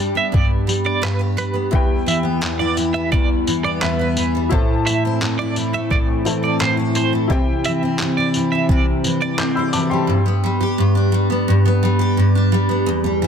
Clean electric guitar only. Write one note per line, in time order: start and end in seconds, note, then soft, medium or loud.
0.17 0.34 E5 medium
0.34 0.51 D5 medium
0.86 1.03 D5 medium
1.04 1.20 B4 medium
1.38 1.55 B4 medium
2.08 2.25 E5 medium
2.59 2.76 D5 medium
2.94 3.11 E5 medium
3.12 3.29 D5 medium
3.65 3.81 D5 medium
3.82 4.31 B4 medium
4.86 5.03 E5 medium
5.39 5.55 D5 medium
5.74 5.90 E5 medium
5.91 6.07 D5 medium
6.44 6.60 D5 medium
6.61 6.77 C5 medium
6.96 7.12 C5 medium
7.66 7.82 E5 medium
8.17 8.33 D5 medium
8.52 8.70 E5 medium
8.70 8.86 D5 medium
9.22 9.39 D5 medium
9.39 9.88 C5 medium